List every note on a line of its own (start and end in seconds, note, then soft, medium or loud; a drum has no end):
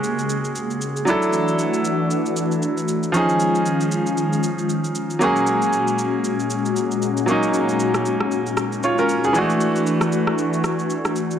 0.00 1.03 C#3 medium
0.00 1.02 G#3 medium
0.00 1.03 G#3 medium
0.00 1.03 A#3 medium
0.00 1.03 C#4 medium
0.00 1.04 F#4 medium
0.00 1.09 G4 medium
0.00 1.05 G#4 medium
0.00 1.08 G#4 medium
0.00 shaker medium
0.19 shaker medium
0.29 shaker loud
0.45 shaker medium
0.56 shaker medium
0.70 shaker soft
0.81 shaker medium
0.96 shaker medium
1.05 3.12 E3 medium
1.05 3.09 F#3 medium
1.05 3.12 A3 medium
1.05 3.10 D4 medium
1.05 3.12 D4 medium
1.05 3.11 E4 medium
1.05 3.12 F#4 medium
1.05 shaker medium
1.10 3.12 A4 medium
1.22 shaker soft
1.33 shaker medium
1.48 shaker soft
1.59 shaker medium
1.74 shaker medium
1.85 shaker medium
2.11 shaker medium
2.26 shaker soft
2.37 shaker medium
2.51 shaker soft
2.62 shaker medium
2.77 shaker soft
2.88 shaker medium
3.03 shaker medium
3.12 5.19 D#3 medium
3.12 5.16 F3 medium
3.12 5.19 G#3 medium
3.12 5.17 C#4 medium
3.12 5.19 C#4 medium
3.12 5.18 D#4 medium
3.12 5.19 F4 medium
3.12 shaker medium
3.17 5.18 G#4 medium
3.29 shaker medium
3.40 shaker medium
3.55 shaker soft
3.66 shaker medium
3.81 shaker medium
3.92 shaker medium
4.06 shaker medium
4.17 shaker medium
4.33 shaker medium
4.43 shaker loud
4.58 shaker soft
4.69 shaker medium
4.84 shaker soft
4.95 shaker medium
5.10 shaker medium
5.19 9.31 A#2 medium
5.19 7.23 F#3 medium
5.19 9.31 G#3 medium
5.19 7.24 A#3 medium
5.19 9.31 C#4 medium
5.19 7.25 C#4 medium
5.19 9.31 F#4 medium
5.19 shaker medium
5.24 7.25 G#4 medium
5.36 shaker soft
5.47 shaker medium
5.62 shaker medium
5.73 shaker medium
5.88 shaker medium
5.99 shaker medium
6.24 shaker medium
6.40 shaker medium
6.50 shaker medium
6.65 shaker medium
6.76 shaker medium
6.91 shaker medium
7.02 shaker medium
7.17 shaker medium
7.26 9.30 F#3 medium
7.26 9.31 A#3 medium
7.26 8.81 C#4 medium
7.26 shaker medium
7.31 8.82 D#4 medium
7.43 shaker medium
7.54 shaker medium
7.69 shaker soft
7.80 shaker medium
7.94 cross-stick medium
7.94 shaker medium
8.06 shaker medium
8.20 cross-stick medium
8.31 shaker medium
8.47 shaker soft
8.57 cross-stick loud
8.57 shaker loud
8.72 shaker soft
8.83 8.98 F4 medium
8.83 8.98 C#5 medium
8.83 shaker medium
8.98 9.23 C#4 medium
8.98 9.23 A#4 medium
8.98 shaker soft
9.09 shaker medium
9.24 9.49 G#4 medium
9.24 shaker medium
9.33 11.37 E3 medium
9.33 11.39 E3 medium
9.33 9.42 G#3 medium
9.33 11.39 A3 medium
9.33 11.39 D4 medium
9.33 11.38 D4 medium
9.33 11.39 F#4 medium
9.33 shaker medium
9.38 11.39 A3 medium
9.38 11.39 F#4 medium
9.50 shaker medium
9.61 shaker medium
9.76 shaker soft
9.87 shaker medium
10.01 cross-stick medium
10.01 shaker medium
10.12 shaker medium
10.27 cross-stick medium
10.38 shaker medium
10.53 shaker medium
10.64 cross-stick medium
10.64 shaker medium
10.79 shaker medium
10.90 shaker medium
11.05 cross-stick medium
11.05 shaker soft
11.16 shaker medium
11.31 shaker medium